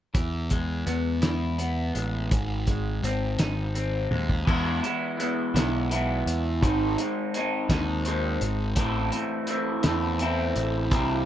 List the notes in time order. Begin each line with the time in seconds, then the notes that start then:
0.14 E2 E3, kick, closed hi-hat
0.50 G#3, kick, closed hi-hat
0.86 E2 B3, closed hi-hat
1.22 E2 E4, snare, closed hi-hat
1.58 B3, closed hi-hat
1.94 A1 G#3, closed hi-hat
2.31 G#1 G#2, kick, closed hi-hat
2.67 G#3, kick, closed hi-hat
3.03 G#1 C4, closed hi-hat
3.39 G#1 D#4, snare, closed hi-hat
3.75 C4, closed hi-hat
4.11 D#2 G#3, high tom
4.29 kick
4.45 E2 E3 G#3 B3 E4, kick, crash
4.83 G#3 B3 E4, closed hi-hat
5.17 E3 G#3 B3 E4, closed hi-hat
5.54 B1 E3 G#3 B3 E4, snare, closed hi-hat
5.90 E3 G#3 B3 E4, closed hi-hat
6.26 E2, closed hi-hat
6.61 G#1 G#2 D#3 G#3 C4 D#4, kick, closed hi-hat
6.98 G#3 C4 D#4, closed hi-hat
7.34 D#3 G#3 C4 D#4, closed hi-hat
7.69 D#2 D#3 G#3 C4 D#4, kick, snare, closed hi-hat
7.74 G#2
8.05 D#3 G#3 C4 D#4, closed hi-hat
8.41 G#1, closed hi-hat
8.76 A1 A2 E3 A3 C4 E4, kick, closed hi-hat
9.12 A3 C4 E4, closed hi-hat
9.47 E3 A3 C4, closed hi-hat
9.51 E4
9.83 E2 A2 E3 A3 C4 E4, snare, closed hi-hat
10.19 E3 A3 C4 E4, closed hi-hat
10.56 A1, closed hi-hat
10.91 C2 C3 E3 G3 C4 E4, kick, closed hi-hat